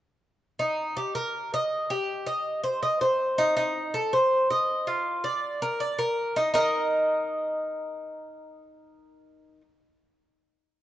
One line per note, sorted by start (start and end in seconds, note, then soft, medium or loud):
0.59 0.96 D#4 medium
0.97 1.15 G4 medium
1.15 1.51 A#4 medium
1.54 1.89 D#5 medium
1.90 2.26 G4 medium
2.26 2.63 D#5 medium
2.64 2.82 C5 medium
2.83 3.01 D#5 medium
3.01 3.37 C5 medium
3.38 3.55 D#4 medium
3.57 3.93 D#4 medium
3.94 4.12 A4 medium
4.13 4.49 C5 medium
4.50 4.86 D#5 medium
4.87 5.23 F4 medium
5.24 5.60 D5 medium
5.62 5.80 A#4 medium
5.80 5.98 D5 medium
5.99 6.34 A#4 medium
6.36 6.53 D#4 medium
6.54 9.61 D#4 medium
6.54 9.61 A#4 medium
6.54 9.62 D#5 medium